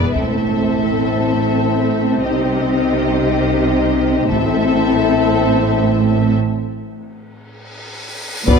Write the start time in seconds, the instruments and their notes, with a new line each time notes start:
Already playing: viola section B3, violin section B4 D5
0.13 double bass section A1, cello section A2, french horn section C4 E4, viola section C4, violin section A4 E5, taiko
2.22 double bass section C2, cello section C3, violin section G4 D#5
2.26 french horn section D#4
4.29 double bass section A1, timpani A2, cello section A2, french horn section C4 E4, viola section C4, violin section A4 E5, taiko
6.37 cymbal swell
8.48 double bass section B1, cello section B2, viola section B3, french horn section D4 F#4, violin section B4 D5, taiko, sub drop